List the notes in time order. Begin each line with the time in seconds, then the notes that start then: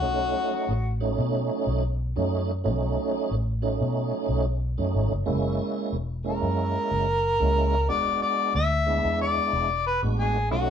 Already playing: F#4
0.02 B1 F#3 A3 C#4 D#4
0.69 A1
1.00 F#3 A3 C#4 D#4
1.18 B2
1.67 B1
2.16 F#2 F#3 A3 C#4 D#4
2.64 B1 F#3 A3 C#4 D#4
3.31 A1
3.62 F#3 A3 C#4 D#4
3.81 B2
4.29 B1
4.78 F#2 F#3 A3 C#4 D#4
4.94 G#1
5.12 F#1
5.26 F#1 G#3 A#3 C#4 E4
5.93 E1
6.24 G#3 A#3 C#4 E4 A#4
6.43 F#2
6.91 F#1
7.39 C#2 G#3 A#3 C#4 E4
7.88 E1 G#3 B3 D4 F#4 D5
8.22 D5
8.55 D2 E5
8.86 G#3 B3 D4 E4
9.05 E2
9.21 D5
9.53 E1
9.87 B4
10.02 A1 G#3 B3 D4 F#4
10.19 G#4
10.51 B1 A3 C#4 D#4 F#4